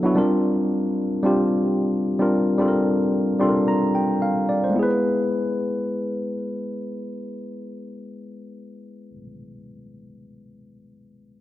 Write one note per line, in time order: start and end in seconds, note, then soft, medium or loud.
0.00 0.03 F#3 medium
0.00 0.16 F#3 medium
0.00 0.04 B3 medium
0.00 0.16 B3 medium
0.00 0.04 D4 medium
0.00 0.05 E4 medium
0.00 0.06 F#4 medium
0.00 0.18 A4 medium
0.04 0.15 D4 medium
0.04 0.17 E4 medium
0.04 0.17 F#4 medium
0.15 1.03 G3 medium
0.15 1.03 C4 medium
0.15 1.03 D4 medium
0.15 1.04 F4 medium
0.15 1.04 A#4 loud
1.23 2.00 G3 medium
1.23 2.00 C4 medium
1.23 2.01 D4 medium
1.23 2.01 F4 medium
1.23 2.02 G4 medium
2.19 2.52 G3 medium
2.19 2.52 C4 medium
2.19 2.52 D4 medium
2.19 2.53 F4 medium
2.19 2.53 A#4 medium
2.58 3.25 G3 medium
2.58 3.25 C4 medium
2.58 3.26 D4 medium
2.58 3.26 F4 medium
2.58 2.68 A4 medium
2.68 3.30 A#4 medium
3.39 4.16 G3 medium
3.39 4.17 C4 medium
3.39 4.17 D4 medium
3.39 4.17 F4 medium
3.39 3.49 A4 medium
3.39 3.66 C6 medium
3.49 4.21 A#4 medium
3.68 3.93 A#5 medium
3.95 4.20 G5 medium
4.22 4.72 F5 medium
4.49 4.63 D5 medium
4.64 4.89 C5 medium
4.70 9.10 G#3 medium
4.70 9.13 B3 medium
4.76 9.16 E4 medium
4.76 9.20 G#4 medium
4.83 9.23 B4 medium